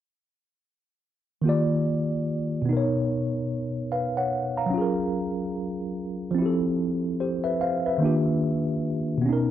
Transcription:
1.42 2.66 D#3 medium
1.42 2.67 A#3 medium
1.42 2.68 F4 medium
1.47 2.69 G4 medium
1.47 2.70 D5 medium
2.62 4.66 B2 medium
2.62 4.68 B3 medium
2.69 4.70 D#4 medium
2.69 3.91 A#4 medium
2.77 3.93 C#5 medium
3.92 4.15 B4 soft
3.92 4.15 F5 medium
4.17 4.56 C#5 medium
4.17 4.56 F#5 medium
4.57 4.96 F5 soft
4.57 4.96 A#5 medium
4.66 6.31 F#3 medium
4.70 6.33 C#4 medium
4.70 6.35 F4 medium
4.78 6.37 G#4 medium
4.78 6.39 A#4 medium
6.31 7.95 F3 medium
6.31 7.97 C4 medium
6.38 7.99 E4 medium
6.38 7.20 G4 medium
6.46 7.22 A4 medium
7.20 7.44 G4 medium
7.20 7.44 C5 medium
7.44 7.60 B4 medium
7.44 7.60 E5 medium
7.61 7.85 C5 medium
7.61 7.84 F5 medium
7.86 8.25 B4 medium
7.86 8.25 E5 medium
7.98 9.23 D#3 medium
7.98 9.24 A#3 medium
7.98 9.25 D4 medium
8.04 9.26 F4 medium
8.04 9.27 G4 medium
9.18 9.51 B2 medium
9.18 9.51 B3 medium
9.26 9.51 C#4 medium
9.26 9.51 D#4 medium
9.33 9.51 A#4 medium

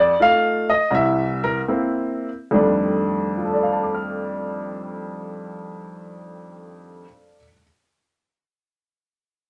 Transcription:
0.00 0.12 F2 medium
0.00 0.20 D5 medium
0.19 0.70 A3 medium
0.19 0.70 D#4 soft
0.19 0.70 F4 medium
0.19 0.67 F5 loud
0.70 0.92 D#5 loud
0.91 1.60 C2 medium
0.91 1.60 E3 medium
0.95 1.43 E5 loud
1.44 1.59 A#4 loud
1.68 2.28 A#3 medium
1.68 2.28 C4 medium
1.68 2.28 E4 medium
2.51 7.03 F2 medium
2.51 7.04 D#3 medium
2.51 7.04 G3 medium
2.51 7.05 A3 medium
2.51 7.06 D4 medium
3.38 7.35 F4 soft
3.45 7.38 A4 soft
3.54 7.43 D5 soft
3.63 7.47 F5 soft
3.72 7.52 A5 soft
3.83 7.57 D6 soft
3.95 7.63 F6 soft

